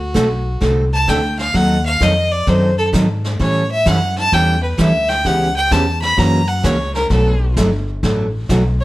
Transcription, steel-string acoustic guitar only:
0.14 0.27 D3 medium
0.14 0.27 A3 medium
0.14 0.27 C4 medium
0.14 0.27 F#4 medium
0.14 0.27 A4 medium
0.61 0.83 D3 medium
0.61 0.84 A3 medium
0.61 0.84 C4 medium
0.61 0.84 F#4 medium
0.61 0.84 A4 medium
1.08 1.20 D3 medium
1.08 1.20 A3 medium
1.08 1.20 C4 medium
1.08 1.20 F#4 medium
1.08 1.20 A4 medium
1.54 1.76 D#3 medium
1.54 1.77 F#3 medium
1.54 1.77 C4 medium
1.54 1.77 D#4 medium
1.54 1.77 A4 medium
2.00 2.12 D#3 medium
2.00 2.12 F#3 medium
2.00 2.13 C4 medium
2.00 2.13 D#4 medium
2.00 2.13 A4 medium
2.47 2.69 D#3 medium
2.47 2.69 F#3 medium
2.47 2.70 C4 medium
2.47 2.70 D#4 medium
2.47 2.70 A4 medium
2.93 3.05 D#3 medium
2.93 3.05 F#3 medium
2.93 3.05 C4 medium
2.93 3.05 D#4 medium
2.93 3.06 A4 medium
3.39 3.62 E3 medium
3.39 3.62 G3 medium
3.39 3.62 C#4 medium
3.39 3.62 E4 medium
3.39 3.62 A4 medium
3.86 3.98 E3 medium
3.86 3.98 G3 medium
3.86 3.98 C#4 medium
3.86 3.98 E4 medium
3.86 3.98 A4 medium
4.32 4.55 E3 medium
4.32 4.55 G3 medium
4.32 4.55 C#4 medium
4.32 4.55 E4 medium
4.32 4.56 A4 medium
4.78 4.90 E3 medium
4.78 4.90 G3 medium
4.78 4.91 C#4 medium
4.78 4.91 E4 medium
4.78 4.91 A4 medium
5.25 5.47 C#3 medium
5.25 5.48 E3 medium
5.25 5.48 B3 medium
5.25 5.48 C#4 medium
5.25 5.48 G4 medium
5.71 5.83 C#3 medium
5.71 5.83 E3 medium
5.71 5.83 B3 medium
5.71 5.84 C#4 medium
5.71 5.84 G4 medium
6.17 6.40 C#3 medium
6.17 6.40 E3 medium
6.17 6.40 A#3 medium
6.17 6.40 C#4 medium
6.17 6.40 F#4 medium
6.63 6.75 C#3 medium
6.63 6.76 E3 medium
6.63 6.76 A#3 medium
6.63 6.76 C#4 medium
6.63 6.76 F#4 medium
7.10 7.33 B2 medium
7.10 7.33 F#3 medium
7.10 7.33 A3 medium
7.10 7.33 D4 medium
7.10 7.33 F#4 medium
7.57 7.69 B2 medium
7.57 7.69 F#3 medium
7.57 7.69 A3 medium
7.57 7.69 D4 medium
7.57 7.69 F#4 medium
8.03 8.26 B2 medium
8.03 8.25 F#3 medium
8.03 8.26 A3 medium
8.03 8.26 D4 medium
8.03 8.26 F#4 medium
8.50 8.61 B2 medium
8.50 8.62 F#3 medium
8.50 8.62 A3 medium
8.50 8.62 D4 medium
8.50 8.62 F#4 medium

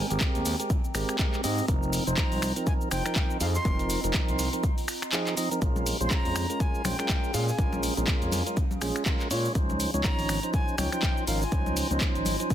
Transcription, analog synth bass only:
0.10 0.17 G#1 medium
0.35 0.42 D#2 medium
0.45 0.55 D#2 loud
0.95 1.04 G#1 medium
1.44 1.61 G#2 medium
1.68 1.99 F1 loud
2.07 2.14 F1 medium
2.32 2.38 C2 medium
2.42 2.51 C2 loud
2.91 3.00 F1 medium
3.41 3.58 F2 medium
3.65 3.96 F1 loud
4.04 4.11 F1 medium
4.29 4.35 C2 medium
4.39 4.48 C2 loud
5.62 5.92 A#1 loud
6.01 6.07 A#1 medium
6.25 6.32 F2 medium
6.36 6.45 F2 loud
6.85 6.94 A#1 medium
7.34 7.51 A#2 medium
7.59 7.89 A#1 loud
7.97 8.04 A#1 medium
8.22 8.29 F2 medium
8.32 8.41 F2 loud
8.81 8.91 A#1 medium
9.31 9.48 A#2 medium
9.55 9.86 C#2 loud
9.94 10.01 C#2 medium
10.19 10.25 G#1 medium
10.29 10.38 G#1 loud
10.78 10.87 C#2 medium
11.27 11.45 G#1 medium
11.52 11.83 C#2 loud
11.91 11.97 C#2 medium
12.15 12.22 G#1 medium
12.26 12.35 G#1 loud

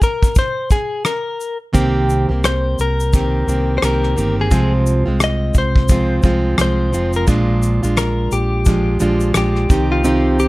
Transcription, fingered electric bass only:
1.74 2.26 C2 medium
2.29 2.74 C2 medium
2.79 3.44 C2 medium
3.47 3.79 C2 medium
3.82 4.14 C2 medium
4.17 4.48 G1 medium
4.51 5.03 C2 medium
5.07 5.51 C2 medium
5.55 6.20 C2 medium
6.24 6.56 C2 medium
6.58 6.90 C2 medium
6.93 7.25 F1 medium
7.28 7.79 A#1 medium
7.83 8.28 A#1 medium
8.32 8.97 A#1 medium
9.01 9.33 A#1 medium
9.35 9.67 A#1 medium
9.70 10.48 C2 medium

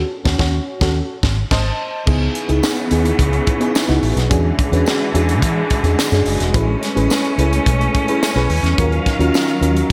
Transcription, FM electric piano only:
0.24 0.37 C#4 loud
0.24 0.37 F#4 loud
0.39 0.58 C#4 loud
0.39 0.58 F#4 loud
0.81 1.00 C#4 medium
0.81 1.00 F#4 loud
0.81 1.01 A4 medium
1.51 1.71 C5 loud
1.51 1.70 D#5 medium
1.51 1.70 A5 loud
2.06 2.41 B3 medium
2.06 2.41 D#4 medium
2.06 2.41 E4 medium
2.06 2.42 G#4 medium
2.48 2.83 B3 medium
2.48 2.83 D#4 medium
2.48 2.84 E4 medium
2.48 2.84 G#4 medium
2.91 3.48 B3 medium
2.91 3.48 D#4 medium
2.91 3.49 E4 medium
2.91 3.49 G#4 medium
3.60 3.83 B3 medium
3.60 3.84 D#4 medium
3.60 3.84 E4 medium
3.60 3.84 G#4 medium
3.88 4.23 B3 medium
3.88 4.23 D#4 medium
3.88 4.23 E4 medium
3.88 4.23 F#4 medium
4.30 4.65 C#4 medium
4.30 4.65 D4 medium
4.30 4.65 F#4 medium
4.30 4.65 G#4 medium
4.72 5.07 C#4 medium
4.72 5.07 D4 medium
4.72 5.07 F#4 medium
4.72 5.07 B4 medium
5.14 5.72 C#4 medium
5.14 5.72 D4 medium
5.14 5.72 F#4 medium
5.14 5.73 G#4 loud
5.84 6.07 C#4 medium
5.84 6.07 D4 medium
5.84 6.08 F#4 medium
5.84 6.08 G#4 medium
6.12 6.47 C#4 medium
6.12 6.47 D4 medium
6.12 6.47 F#4 medium
6.12 6.47 G#4 loud
6.54 6.89 C#4 medium
6.54 6.89 E4 medium
6.54 6.89 G#4 medium
6.54 6.89 B4 medium
6.95 7.30 C#4 medium
6.95 7.31 E4 medium
6.95 7.31 G#4 medium
6.95 7.31 B4 loud
7.38 7.96 C#4 medium
7.38 7.96 E4 medium
7.38 7.96 G#4 medium
7.38 7.96 B4 medium
8.08 8.31 C#4 medium
8.08 8.31 E4 medium
8.08 8.31 G#4 medium
8.08 8.32 B4 medium
8.35 8.70 C#4 medium
8.35 8.71 E4 medium
8.35 8.71 G#4 medium
8.35 8.71 B4 loud
8.78 9.13 C#4 medium
8.78 9.13 F4 medium
8.78 9.13 F#4 medium
8.78 9.13 A#4 medium
9.19 9.54 C#4 medium
9.19 9.55 F4 medium
9.19 9.55 F#4 medium
9.19 9.55 A#4 medium
9.61 9.90 C#4 medium
9.61 9.90 F4 medium
9.61 9.89 F#4 medium
9.61 9.90 A#4 medium

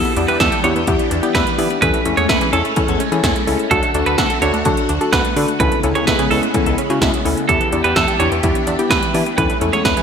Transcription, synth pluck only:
0.17 0.46 B3 medium
0.17 0.46 E4 medium
0.17 0.46 G4 loud
0.64 0.78 B3 medium
0.64 0.78 E4 medium
0.64 0.78 G4 medium
0.87 1.09 B3 medium
0.87 1.09 E4 medium
0.87 1.09 G4 loud
1.23 1.45 B3 medium
1.23 1.45 E4 medium
1.23 1.45 G4 loud
1.58 1.73 B3 medium
1.58 1.73 E4 medium
1.58 1.73 G4 loud
1.82 1.97 C#4 medium
1.82 1.97 E4 medium
1.82 1.97 A4 loud
2.06 2.35 C#4 medium
2.06 2.35 E4 medium
2.06 2.35 A4 medium
2.53 2.67 C#4 medium
2.53 2.67 E4 medium
2.53 2.67 A4 loud
2.76 2.98 C#4 medium
2.76 2.98 E4 medium
2.76 2.98 A4 loud
3.12 3.34 C#4 medium
3.12 3.34 E4 medium
3.12 3.34 A4 loud
3.47 3.62 C#4 medium
3.47 3.62 E4 medium
3.47 3.62 A4 loud
3.71 3.86 D4 medium
3.71 3.86 F#4 medium
3.71 3.86 A4 loud
3.95 4.24 D4 medium
3.95 4.24 F#4 medium
3.95 4.24 A4 loud
4.42 4.56 D4 medium
4.42 4.56 F#4 medium
4.42 4.56 A4 medium
4.65 4.87 D4 medium
4.65 4.87 F#4 medium
4.65 4.87 A4 loud
5.01 5.23 D4 medium
5.01 5.23 F#4 medium
5.01 5.23 A4 loud
5.36 5.51 D4 medium
5.36 5.51 F#4 medium
5.36 5.51 A4 loud
5.60 5.75 C#4 medium
5.60 5.75 E4 medium
5.60 5.75 A4 loud
5.84 6.13 C#4 medium
5.84 6.13 E4 medium
5.84 6.13 A4 loud
6.31 6.45 C#4 medium
6.31 6.45 E4 medium
6.31 6.45 A4 medium
6.54 6.76 C#4 medium
6.54 6.76 E4 medium
6.54 6.76 A4 loud
6.90 7.12 C#4 medium
6.90 7.12 E4 medium
6.90 7.12 F#4 loud
7.25 7.40 C#4 medium
7.25 7.40 E4 medium
7.25 7.40 A4 medium
7.49 7.63 B3 medium
7.49 7.63 E4 medium
7.49 7.63 G4 loud
7.72 8.02 B3 medium
7.72 8.02 E4 medium
7.72 8.02 G4 loud
8.20 8.34 B3 medium
8.20 8.34 E4 medium
8.20 8.34 G4 loud
8.43 8.65 B3 medium
8.43 8.65 E4 medium
8.43 8.65 G4 loud
8.79 9.01 B3 medium
8.79 9.01 E4 medium
8.79 9.01 G4 loud
9.14 9.29 B3 medium
9.14 9.29 E4 medium
9.14 9.29 G4 loud
9.38 9.53 C#4 medium
9.38 9.53 E4 medium
9.38 9.53 A4 loud
9.62 9.91 C#4 medium
9.62 9.91 E4 medium
9.62 9.91 A4 loud

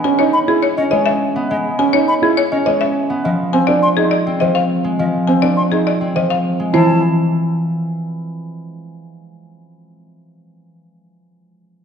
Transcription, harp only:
0.00 0.91 G#3 medium
0.00 1.34 B3 medium
0.78 2.51 C#4 medium
0.92 1.49 G#3 medium
1.36 3.09 B3 medium
1.51 2.65 G#3 medium
2.52 3.27 C#4 medium
2.66 4.83 G#3 medium
3.10 3.27 B3 medium
3.25 4.40 F3 medium
4.27 6.00 C4 medium
4.41 4.98 F3 medium
4.84 6.58 G#3 medium
4.99 6.14 F3 medium
6.01 9.91 C4 medium
6.16 6.76 F3 medium
6.60 6.76 G#3 soft
6.74 10.64 E3 medium

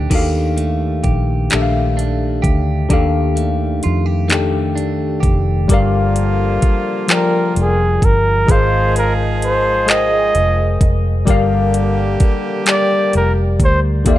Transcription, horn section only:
5.68 7.97 D3 medium
5.68 7.97 F3 medium
5.68 7.98 A#3 medium
5.68 7.97 F4 medium
8.47 10.76 F3 medium
8.47 10.76 G#3 medium
8.47 10.76 D#4 medium
8.47 10.76 G#4 medium
11.26 13.55 D3 medium
11.26 13.55 G3 medium
11.26 13.55 A#3 medium
11.26 13.55 G4 medium
14.06 14.19 D3 medium
14.06 14.19 F3 medium
14.06 14.19 A#3 medium
14.06 14.19 F4 medium

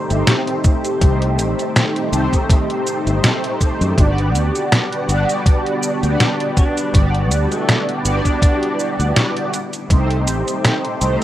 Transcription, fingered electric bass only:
0.11 0.23 G1 loud
1.01 1.39 C2 loud
1.39 1.53 A1 loud
2.12 2.27 C2 medium
3.07 3.19 G1 medium
3.81 3.93 F#2 loud
3.98 4.35 G1 loud
4.35 4.49 D2 loud
5.09 5.23 G1 medium
6.03 6.15 D2 medium
6.94 7.31 G1 loud
7.31 7.45 D2 loud
8.05 8.20 G1 medium
8.99 9.12 D2 medium
9.90 10.28 C2 loud
10.28 10.42 A1 loud
11.01 11.16 C2 medium

